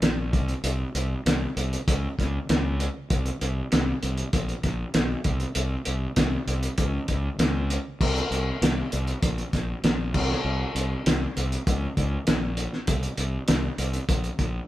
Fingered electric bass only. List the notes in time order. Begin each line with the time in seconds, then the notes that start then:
0.02 A#1
0.33 C2
0.64 C2
0.95 C2
1.26 C2
1.57 C2
1.87 C#2
2.19 C#2
2.49 C#2
3.10 C2
3.42 C2
3.73 C2
4.03 C2
4.33 A#1
4.64 A#1
4.94 B1
5.25 C2
5.56 C2
5.87 C2
6.17 C2
6.47 C2
6.78 C#2
7.09 C#2
7.39 C#2
8.00 C2
8.31 C2
8.62 C2
8.93 C2
9.22 A#1
9.53 A#1
9.84 A#1
10.14 C2
10.44 C2
10.75 C2
11.07 C2
11.37 C2
11.67 C#2
11.97 C#2
12.28 A#1
12.88 C2
13.18 C2
13.49 C2
13.78 C2
14.09 A#1
14.39 A#1